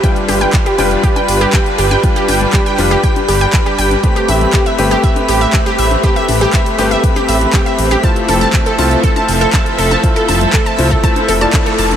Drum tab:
HH |xxoxxxoxxxoxxxox|xxoxxxoxxxoxxxox|xxoxxxoxxxoxxxox|xxoxxxoxxxoxxxox|
CP |----x-------x---|----x-x-----x---|----x-------x---|----x-------x---|
CG |--oO--o--o--o--o|--oO--oO-o--o--o|--oO--o--o--o--o|--oO--o--o--o--o|
BD |o---o---o---o---|o---o---o---o---|o---o---o---o---|o---o---o---o---|

HH |xxoxxxoxxxoxxxox|xxoxxxoxxxoxxxox|
CP |----x-------x---|----x-x-----x---|
CG |--oO--o--o--o--o|--oO--o--o--o--o|
BD |o---o---o---o---|o---o--oo---o---|